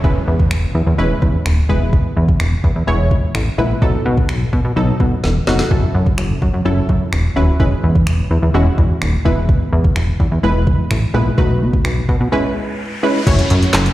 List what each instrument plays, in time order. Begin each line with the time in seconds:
Already playing: downlifter
0.04 analog synth bass E1, synth stab G#3 C#4 E4 B4, kick
0.28 analog synth bass E2
0.40 kick
0.51 analog synth bass E1, finger snap
0.75 analog synth bass E2
0.87 analog synth bass E2
0.98 analog synth bass E1, synth stab G#3 C#4 E4 B4
1.22 analog synth bass E2, kick
1.46 analog synth bass D#1, finger snap
1.69 analog synth bass E1, synth stab G#3 B3 E4 B4, kick
1.93 kick
2.17 analog synth bass E2
2.29 kick
2.40 analog synth bass E1, finger snap
2.64 analog synth bass E2, kick
2.76 analog synth bass E2
2.87 analog synth bass E1, synth stab G#3 B3 E4 C#5
3.11 analog synth bass E2, kick
3.35 analog synth bass A1, finger snap
3.58 analog synth bass A#1, synth stab G#3 B3 E4 B4
3.82 analog synth bass B1, synth stab F#3 B3 D#4 A4, kick
4.06 analog synth bass B2
4.17 kick
4.29 analog synth bass B1, finger snap
4.53 analog synth bass B2, kick
4.65 analog synth bass B2
4.76 analog synth bass B1, synth stab F#3 B3 D#4 A4
5.00 analog synth bass B2, kick
5.24 analog synth bass E1, snare
5.47 analog synth bass F1, synth stab F#3 B3 D#4 F#4, snare
5.59 snare
5.71 analog synth bass F#1, synth stab F#3 C#4 E4 A4, kick
5.95 analog synth bass F#2
6.06 kick
6.18 analog synth bass F#1, finger snap
6.42 analog synth bass F#2, kick
6.54 analog synth bass F#2
6.65 analog synth bass F#1, synth stab F#3 C#4 E4 A4
6.89 analog synth bass F#2, kick
7.13 analog synth bass E1, finger snap
7.36 analog synth bass D#1, synth stab F#3 C#4 E4 B4
7.60 analog synth bass E1, synth stab G#3 C#4 E4 B4, kick
7.83 analog synth bass E2
7.95 kick
8.07 analog synth bass E1, finger snap
8.31 analog synth bass E2
8.43 analog synth bass E2
8.54 analog synth bass E1, synth stab G#3 C#4 E4 F#4
8.78 analog synth bass E2, kick
9.02 analog synth bass D#1, finger snap
9.25 analog synth bass E1, synth stab G#3 B3 E4 B4, kick
9.49 kick
9.73 analog synth bass E2
9.84 kick
9.96 analog synth bass E1, finger snap
10.20 analog synth bass E2, kick
10.32 analog synth bass E2
10.43 analog synth bass E1, synth stab G#3 B3 E4 B4
10.67 analog synth bass E2, kick
10.91 analog synth bass A1, finger snap
11.14 analog synth bass A#1, synth stab G#3 B3 E4 B4
11.38 analog synth bass B1, synth stab A3 D#4 F#4 B4, kick, riser
11.61 analog synth bass B2
11.73 kick
11.85 analog synth bass B1, finger snap
12.09 analog synth bass B2, kick
12.21 analog synth bass B2
12.32 synth stab G#3 C#4 E4 B4
13.03 synth stab G#3 C#4 E4 B4
13.27 analog synth bass F#1, synth stab A3 C#4 E4 F#4 C#5, kick, closed hi-hat, crash, downlifter
13.39 closed hi-hat
13.50 analog synth bass F#2, closed hi-hat
13.62 closed hi-hat
13.73 analog synth bass F#1, snare, clap, closed hi-hat
13.86 closed hi-hat